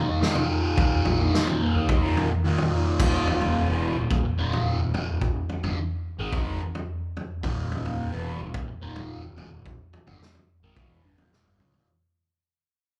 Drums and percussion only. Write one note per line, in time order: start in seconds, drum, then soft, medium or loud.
0.23 snare medium
0.35 floor tom medium
0.35 mid tom medium
0.77 kick loud
0.77 floor tom medium
1.05 floor tom medium
1.34 snare medium
1.47 floor tom medium
1.89 kick loud
1.89 floor tom medium
2.17 floor tom medium
2.58 floor tom medium
3.00 kick loud
3.00 floor tom medium
3.00 crash loud
3.27 floor tom medium
3.41 floor tom medium
4.11 kick loud
4.11 floor tom loud
4.53 floor tom medium
4.94 floor tom medium
5.21 kick loud
5.21 floor tom medium
5.49 floor tom medium
5.63 floor tom medium
6.33 kick loud
6.33 floor tom medium
6.75 floor tom medium
7.17 floor tom medium
7.43 kick loud
7.43 floor tom medium
7.72 floor tom medium
7.85 floor tom medium
8.54 kick loud
8.54 floor tom loud
8.96 floor tom medium
9.38 floor tom medium
9.66 kick loud
9.66 floor tom medium
9.93 floor tom medium
10.07 floor tom medium
10.22 snare medium
10.35 floor tom medium
10.76 kick loud
10.76 floor tom medium
11.18 floor tom medium
11.33 snare medium
11.60 mid tom medium
11.74 floor tom medium